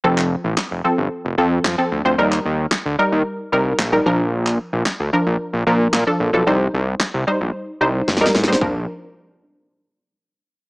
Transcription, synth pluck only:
\new Staff \with { instrumentName = "Synth pluck" } { \time 4/4 \key bes \major \tempo 4 = 112 <f c' a'>4~ <f c' a'>16 r16 <f c' a'>8. r16 <f c' a'>8 r16 <f c' a'>8 <f c' c''>16 | <g ees' bes'>4~ <g ees' bes'>16 r16 <g ees' bes'>8. r16 <g ees' bes'>8 r16 <g ees' bes'>16 <f d' bes'>8~ | <f d' bes'>4 r8 <f d' bes'>8. r16 <f d' bes'>8 r16 <f d' a'>8 <f d' a'>16 | <g ees' c''>4~ <g ees' c''>16 r16 <g ees' c''>8. r16 <g ees' c''>8 r16 <g ees' bes'>8 <g ees' c''>16 |
<f d' bes'>8 r2. r8 | }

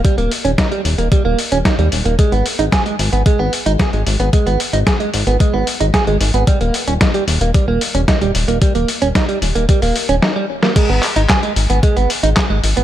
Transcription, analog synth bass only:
\new Staff \with { instrumentName = "Analog synth bass" } { \clef bass \time 4/4 \key gis \minor \tempo 4 = 112 r16 dis,,16 r16 dis,,16 r8 dis,,16 dis,,16 r16 dis,,16 r16 dis,,16 r16 dis,16 dis,,16 dis,,16 | r16 gis,,16 r16 gis,,16 r8 gis,,16 gis,,16 r16 gis,,16 r16 gis,,16 r16 gis,,16 gis,,16 gis,,16 | r16 gis,,16 r16 gis,,16 r8 gis,,16 gis,,16 r16 gis,,16 r16 gis,,16 r16 gis,,16 gis,,16 gis,,16 | r16 dis,,16 r16 dis,,16 r8 dis,,16 dis,,16 r16 dis,,16 r16 dis,,16 r16 dis,,16 dis,,16 dis,,16 |
r16 dis,,16 r16 dis,,16 r8 dis,,16 dis,,16 r16 dis,,16 r16 dis,,16 r4 | r16 gis,,16 r16 gis,,16 r8 gis,,16 gis,,16 r16 gis,,16 r16 gis,,16 r16 gis,,16 gis,,16 gis,,16 | }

